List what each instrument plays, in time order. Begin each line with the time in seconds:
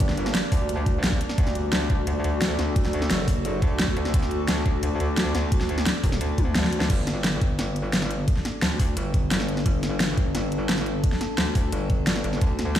Already playing: wobble bass G1, synth drone G3 D4 A#4, ambient pad A#3 D4 G4 D5
0.00 kick, closed hi-hat
0.09 snare
0.17 closed hi-hat
0.26 snare
0.35 snare, closed hi-hat
0.52 wobble bass D2, kick, open hi-hat
0.69 closed hi-hat
0.86 kick, closed hi-hat
1.04 wobble bass A#1, snare, closed hi-hat
1.12 kick
1.21 closed hi-hat
1.29 snare
1.38 wobble bass D2, synth drone D4 A4 D5, kick, closed hi-hat
1.42 ambient pad F#4
1.47 snare
1.55 ambient pad A4, closed hi-hat
1.73 snare, closed hi-hat
1.90 wobble bass D2, kick, closed hi-hat
2.07 wobble bass D2, closed hi-hat
2.24 wobble bass D2, closed hi-hat
2.42 snare, closed hi-hat
2.59 wobble bass D2, snare, closed hi-hat
2.76 kick, closed hi-hat
2.85 snare
2.93 closed hi-hat
3.02 snare
3.10 wobble bass F#1, snare, closed hi-hat
3.28 kick, open hi-hat
3.45 closed hi-hat
3.62 wobble bass D2, kick, closed hi-hat
3.79 snare, closed hi-hat
3.88 kick
3.97 wobble bass D2, closed hi-hat
4.05 snare
4.14 wobble bass D2, kick, closed hi-hat
4.23 snare
4.31 closed hi-hat
4.48 snare, closed hi-hat
4.66 wobble bass D2, kick, closed hi-hat
4.83 wobble bass D2, closed hi-hat
5.00 wobble bass D2, closed hi-hat
5.17 snare, closed hi-hat
5.35 wobble bass D2, snare, closed hi-hat
5.52 kick, closed hi-hat
5.61 snare
5.69 closed hi-hat
5.78 snare
5.86 snare, closed hi-hat
6.04 wobble bass D#1, kick, open hi-hat
6.12 snare
6.21 wobble bass D2, closed hi-hat
6.38 kick, closed hi-hat, high tom
6.55 wobble bass D2, snare, closed hi-hat, mid tom
6.64 snare
6.73 closed hi-hat
6.81 snare
6.90 wobble bass G1, synth drone G3 D4 A4, kick, closed hi-hat, crash
7.07 snare, closed hi-hat
7.24 snare, closed hi-hat
7.42 kick, closed hi-hat
7.59 snare, closed hi-hat
7.76 closed hi-hat
7.93 snare, closed hi-hat
8.02 snare
8.11 closed hi-hat
8.28 kick, closed hi-hat
8.36 snare
8.45 snare, closed hi-hat
8.62 wobble bass D2, snare, closed hi-hat
8.80 kick, open hi-hat
8.97 wobble bass G1, closed hi-hat
9.14 kick, closed hi-hat
9.31 snare, closed hi-hat
9.40 snare
9.49 closed hi-hat
9.57 snare
9.66 wobble bass G1, kick, closed hi-hat
9.83 snare, closed hi-hat
10.00 snare, closed hi-hat
10.17 kick, closed hi-hat
10.35 snare, closed hi-hat
10.52 closed hi-hat
10.69 snare, closed hi-hat
10.78 snare
10.86 closed hi-hat
11.04 kick, closed hi-hat
11.12 snare
11.21 snare, closed hi-hat
11.38 wobble bass D2, snare, closed hi-hat
11.55 kick, open hi-hat
11.72 wobble bass G1, closed hi-hat
11.90 kick, closed hi-hat
12.07 snare, closed hi-hat
12.16 snare
12.24 wobble bass G1, closed hi-hat
12.33 snare
12.41 wobble bass D2, synth drone D4 D5, kick, closed hi-hat
12.59 snare, closed hi-hat
12.76 snare, closed hi-hat